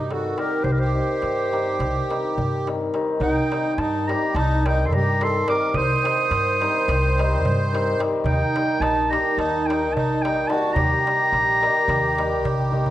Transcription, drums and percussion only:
0.11 darbuka tek medium
0.38 darbuka tek medium
0.64 darbuka dum medium
0.80 darbuka tek soft
1.08 darbuka tek soft
1.22 darbuka tek medium
1.38 darbuka tek soft
1.53 darbuka tek medium
1.67 darbuka tek soft
1.80 darbuka tek medium
1.80 darbuka dum medium
1.95 darbuka tek soft
2.11 darbuka tek medium
2.25 darbuka tek soft
2.38 darbuka dum medium
2.53 darbuka tek soft
2.67 darbuka tek medium
2.81 darbuka tek soft
2.94 darbuka tek medium
3.08 darbuka tek soft
3.21 darbuka dum medium
3.52 darbuka tek medium
3.65 darbuka tek soft
3.78 darbuka tek medium
3.94 darbuka tek soft
4.09 darbuka tek medium
4.23 darbuka tek soft
4.36 darbuka tek medium
4.51 darbuka tek soft
4.66 darbuka tek medium
4.79 darbuka tek soft
4.93 darbuka dum medium
5.21 darbuka tek medium
5.35 darbuka tek soft
5.48 darbuka tek medium
5.61 darbuka tek soft
5.74 darbuka dum loud
6.05 darbuka tek medium
6.19 darbuka tek soft
6.31 darbuka tek medium
6.47 darbuka tek soft
6.62 darbuka tek medium
6.75 darbuka tek soft
6.89 darbuka tek medium
7.04 darbuka tek soft
7.19 darbuka tek medium
7.45 darbuka dum medium
7.75 darbuka tek medium
7.88 darbuka tek soft
8.00 darbuka tek medium
8.14 darbuka tek soft
8.26 darbuka dum loud
8.56 darbuka tek medium
8.70 darbuka tek soft
8.82 darbuka tek medium
8.97 darbuka tek soft
9.13 darbuka tek medium
9.26 darbuka tek soft
9.39 darbuka tek medium
9.55 darbuka tek soft
9.70 darbuka tek medium
9.83 darbuka tek soft
9.97 darbuka dum medium
10.25 darbuka tek medium
10.38 darbuka tek soft
10.50 darbuka tek medium
10.64 darbuka tek soft
10.76 darbuka dum loud
10.91 darbuka tek soft
11.07 darbuka tek medium
11.20 darbuka tek soft
11.33 darbuka tek medium
11.63 darbuka tek medium
11.76 darbuka tek soft
11.89 darbuka tek medium
11.89 darbuka dum medium
12.04 darbuka tek soft
12.18 darbuka tek medium
12.32 darbuka tek soft
12.45 darbuka dum loud
12.60 darbuka dum medium
12.73 darbuka dum medium
12.86 darbuka dum medium

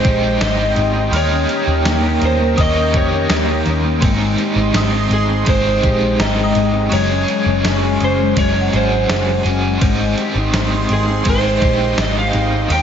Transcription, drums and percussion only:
0.05 kick medium
0.05 ride soft
0.41 snare loud
0.41 ride medium
0.41 tambourine medium
0.76 ride soft
1.13 ride medium
1.49 ride soft
1.85 snare medium
1.85 ride medium
1.85 tambourine medium
2.22 ride soft
2.58 kick medium
2.58 ride medium
2.94 kick loud
2.94 ride soft
3.30 snare loud
3.30 ride soft
3.30 tambourine medium
3.66 ride soft
4.02 kick loud
4.02 ride medium
4.38 ride soft
4.74 snare loud
4.74 ride medium
4.74 tambourine medium
5.11 ride soft
5.46 kick medium
5.46 ride medium
5.83 kick medium
5.83 ride soft
6.20 snare loud
6.20 ride medium
6.20 tambourine medium
6.55 ride soft
6.92 ride medium
7.28 ride soft
7.65 snare loud
7.65 ride medium
7.65 tambourine medium
8.00 ride soft
8.37 kick medium
8.37 ride medium
8.73 ride soft
9.09 snare loud
9.09 ride medium
9.09 tambourine medium
9.46 ride soft
9.81 kick loud
9.81 ride medium
10.18 ride soft
10.54 snare loud
10.54 ride medium
10.54 tambourine medium
10.89 ride soft
11.25 kick medium
11.25 ride medium
11.62 kick medium
11.62 ride soft
11.98 snare loud
11.98 ride medium
11.98 tambourine medium
12.33 ride soft
12.70 ride medium

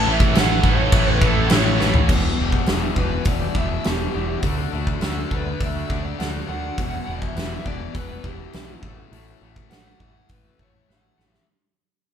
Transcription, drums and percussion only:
0.20 kick medium
0.35 snare loud
0.35 crash medium
0.64 kick medium
0.92 kick loud
0.92 crash medium
1.22 kick medium
1.50 snare loud
1.50 crash medium
1.81 snare medium
1.94 floor tom loud
2.09 kick loud
2.09 crash medium
2.52 kick medium
2.66 snare loud
2.66 open hi-hat soft
2.96 kick medium
3.25 kick loud
3.25 open hi-hat soft
3.55 kick medium
3.84 snare medium
3.84 open hi-hat soft
4.42 kick medium
4.42 open hi-hat medium
4.87 kick medium
5.01 snare loud
5.01 open hi-hat soft
5.31 kick medium
5.61 kick medium
5.61 open hi-hat soft
5.90 kick medium
6.20 snare medium
6.20 open hi-hat soft
6.78 kick loud
6.78 open hi-hat soft
7.22 kick medium
7.37 snare medium
7.37 open hi-hat soft
7.66 kick medium
7.95 kick medium
7.95 open hi-hat soft
8.24 kick medium
8.53 snare loud
8.53 open hi-hat soft
8.83 kick medium
9.13 open hi-hat soft
9.56 kick medium
9.71 snare medium
9.71 open hi-hat soft
10.00 kick medium
10.29 kick medium
10.29 open hi-hat soft
10.59 kick medium
10.90 snare medium
11.20 snare medium
11.34 snare medium

